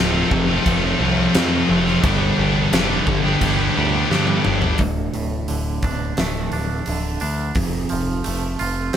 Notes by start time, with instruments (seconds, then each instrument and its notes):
Already playing: picked electric bass D1, distorted electric guitar F2 C3 F3 A3 C4
0.00 distorted electric guitar F4
0.13 distorted electric guitar F3 A3 C4 F4
0.30 picked electric bass F1, distorted electric guitar F2 C3 F3, muted distorted electric guitar stroke, kick
0.47 distorted electric guitar F3 A3 C4 F4
0.66 picked electric bass F1, distorted electric guitar F2 C3 F3, kick, crash
0.82 distorted electric guitar F3 A3 C4 F4
1.00 picked electric bass C2, distorted electric guitar F3 A3 C4 F4
1.18 distorted electric guitar F3 A3 C4 F4
1.34 distorted electric guitar F2 C3 F3 A3 C4 F4, picked electric bass F2, snare, crash
1.52 distorted electric guitar F3 A3 C4 F4
1.68 picked electric bass F1, distorted electric guitar F2 C3 F3 A3 C4 F4
1.86 distorted electric guitar F3 A3 C4 F4, snare
2.03 picked electric bass G1, distorted electric guitar G2 D3 G3 B3 D4 G4, kick, crash
2.38 picked electric bass G1, distorted electric guitar G3 B3 D4 G4
2.72 picked electric bass F1, distorted electric guitar G2 D3 G3 B3 D4 G4, snare, crash
2.90 distorted electric guitar G3 B3 D4 G4
3.07 picked electric bass G1, distorted electric guitar G2 D3 G3, muted distorted electric guitar stroke, kick
3.24 distorted electric guitar G3 B3 D4 G4
3.41 picked electric bass G1, distorted electric guitar G2 D3 G3, kick, crash
3.57 distorted electric guitar G3 B3 D4 G4
3.76 picked electric bass D2, distorted electric guitar G3 B3 D4 G4
3.93 distorted electric guitar G3 B3 D4 G4
4.09 distorted electric guitar G2 D3 G3 B3 D4 G4, picked electric bass G2, snare
4.27 distorted electric guitar G3 B3 D4 G4, high tom
4.44 picked electric bass G1, distorted electric guitar G2 D3 G3 B3 D4 G4, mid tom
4.61 distorted electric guitar G3 B3 D4 G4, floor tom
4.78 picked electric bass D1, clean electric guitar D2, kick, open hi-hat
5.13 picked electric bass D1, clean electric guitar A2, open hi-hat
5.48 picked electric bass D1, clean electric guitar D3, open hi-hat
5.82 picked electric bass D1, clean electric guitar D4, kick, open hi-hat
6.17 picked electric bass D1, clean electric guitar A3, snare, open hi-hat
6.52 picked electric bass D1, clean electric guitar D4, open hi-hat
6.86 picked electric bass D1, clean electric guitar D3, open hi-hat
7.20 picked electric bass D2, clean electric guitar D4, open hi-hat
7.55 picked electric bass F1, clean electric guitar F2, kick, open hi-hat
7.89 picked electric bass F1, clean electric guitar F3, open hi-hat
8.24 picked electric bass F1, clean electric guitar A3, open hi-hat
8.59 picked electric bass F1, clean electric guitar F4, open hi-hat
8.93 clean electric guitar C4, open hi-hat